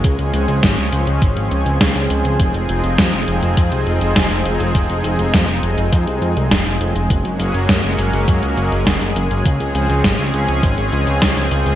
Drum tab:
HH |xxxxxxxxxxxxxxxx|xxxxxxxxxxxxxxxx|xxxxxxxxxxxxxxxx|xxxxxxxxxxxxxxxx|
SD |----o-------o---|----o-------o---|----o-------o---|----o-------o---|
BD |o---o---o---o---|o---o---o---o---|o---o---o---o---|o---o---o---o---|

HH |xxxxxxxxxxxxxxxx|
SD |----o-------o---|
BD |o---o---o---o---|